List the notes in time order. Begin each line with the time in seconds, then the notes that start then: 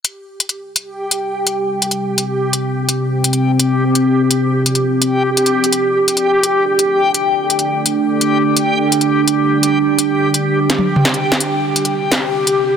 0.04 C4 G4 D5, closed hi-hat
0.40 closed hi-hat
0.49 closed hi-hat
0.76 closed hi-hat
1.11 closed hi-hat
1.47 closed hi-hat
1.82 closed hi-hat
1.91 closed hi-hat
2.18 closed hi-hat
2.53 closed hi-hat
2.88 F4, closed hi-hat
3.24 closed hi-hat
3.33 closed hi-hat
3.60 closed hi-hat
3.95 closed hi-hat
4.31 closed hi-hat
4.66 closed hi-hat
4.75 closed hi-hat
5.02 closed hi-hat
5.37 closed hi-hat
5.46 closed hi-hat
5.64 closed hi-hat
5.73 D4 A4, closed hi-hat
6.08 closed hi-hat
6.17 closed hi-hat
6.43 closed hi-hat
6.79 closed hi-hat
7.14 closed hi-hat
7.50 closed hi-hat
7.59 closed hi-hat
7.86 closed hi-hat
8.21 closed hi-hat
8.56 G4, closed hi-hat
8.92 closed hi-hat
9.01 closed hi-hat
9.28 closed hi-hat
9.63 closed hi-hat
9.99 closed hi-hat
10.34 closed hi-hat
10.70 snare, closed hi-hat
10.78 high tom
10.96 mid tom
11.05 snare, closed hi-hat
11.14 closed hi-hat
11.32 snare
11.40 C4 G4 D5, closed hi-hat
11.76 closed hi-hat
11.85 closed hi-hat
12.12 snare, closed hi-hat
12.47 closed hi-hat